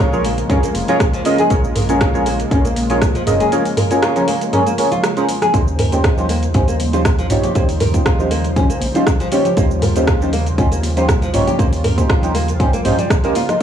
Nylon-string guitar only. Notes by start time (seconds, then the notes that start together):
0.00 F4
0.25 A#3
0.50 C#4
0.64 A#3
0.89 F4
1.14 F3
1.39 G#4
1.51 A#3
1.76 A#4
2.01 F4
2.26 A#3
2.51 C#4
2.65 A#3
2.90 F4
3.15 F3
3.41 G#4
3.52 A#3
3.77 A#4
4.03 F4
4.28 A#3
4.53 C#4
4.67 A#3
4.91 F4
5.17 F3
5.42 G#4
5.54 A#3
5.79 A#4
6.04 F4
6.29 A#3
6.54 C#4
6.68 A#3
6.93 F4
7.19 F3
7.44 G4
7.55 A#3
7.81 A#4
8.06 F4
8.31 A#3
8.56 C#4
8.70 A#3
8.95 F4
9.20 F3
9.45 G4
9.57 A#3
9.82 A#4
10.08 F4
10.33 A#3
10.58 C#4
10.71 A#3
10.97 F4
11.22 F3
11.47 G4
11.59 A#3
11.84 A#4
12.09 F4
12.35 A#3
12.60 C#4
12.73 A#3
12.98 G3
13.24 A#3
13.35 F4
13.49 D#4